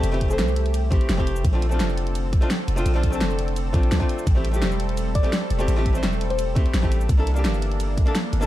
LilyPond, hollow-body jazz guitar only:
\new Staff \with { instrumentName = "Hollow-body jazz guitar" } { \time 4/4 \key a \phrygian \tempo 4 = 170 <c' e' g'>16 <a c' e' g'>8 <a c' e' c''>4.~ <a c' e' c''>16 <a c' e' g'>8. <a c' e' g'>8. | r16 <a c' d' f'>16 r16 <a c' d' f'>2 <a c' d' f'>16 r8. <a c' d' f'>16~ | <a c' d' f'>16 <a c' d' f'>8 <a c' d' a'>4.~ <a c' d' a'>16 <a c' d' f'>8. <a c' d' f'>8. | r16 <a c' e' g'>16 r16 <a c' e' g'>2 <a c' e' g'>16 r8. <a c' e' g'>16~ |
<a c' e' g'>16 <a c' e' g'>8 <a c' e' c''>4.~ <a c' e' c''>16 <a c' e' g'>8. <a c' e' g'>8. | r16 <bes d' e' a'>16 r16 <bes d' e' g'>2 <bes d' e' a'>16 r8. <bes d' e' a'>16 | }